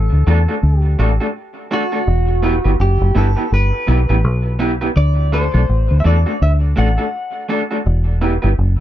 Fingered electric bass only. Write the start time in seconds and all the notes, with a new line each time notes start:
0.12 D2
0.27 E2
0.63 D2
0.99 A1
2.07 E1
2.65 G1
2.79 F#1
3.01 F#1
3.16 G1
3.52 G1
3.88 B1
4.10 A1
4.24 B1
4.96 D2
5.54 B1
5.69 A1
5.91 D2
6.05 E2
6.41 D2
6.78 A1
7.86 E1
8.44 G1
8.58 F#1